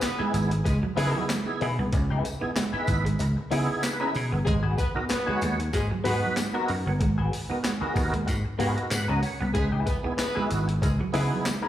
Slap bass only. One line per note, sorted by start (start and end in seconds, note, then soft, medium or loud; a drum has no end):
0.20 muted slap bass stroke medium
0.34 0.61 G#1 loud
0.66 0.81 C#2 medium
0.98 1.13 C#3 loud
1.62 1.76 B2 medium
1.79 1.90 C2 medium
1.93 2.20 C#2 medium
2.42 muted slap bass stroke soft
2.73 muted slap bass stroke medium
2.88 3.15 G#1 medium
3.20 3.35 C#2 medium
3.52 3.67 C#3 loud
4.16 4.30 B2 loud
4.33 4.45 G1 loud
4.47 4.74 G#1 loud
4.96 muted slap bass stroke soft
5.28 muted slap bass stroke medium
5.42 5.69 D#2 medium
5.74 5.89 G#2 loud
6.06 6.21 G#2 medium
6.70 6.84 F#2 medium
6.86 7.01 G1 loud
7.01 7.28 G#1 loud
7.50 muted slap bass stroke soft
7.82 muted slap bass stroke medium
7.96 8.23 D#2 medium
8.28 8.43 G#2 loud
8.60 8.75 G#2 loud
8.92 9.07 G#2 loud
9.09 9.21 C#2 loud
9.41 9.53 C2 medium
9.55 9.82 C#2 loud
10.05 muted slap bass stroke medium
10.37 muted slap bass stroke medium
10.51 10.78 G#1 medium
10.82 10.97 C#2 loud
11.15 11.30 C#3 loud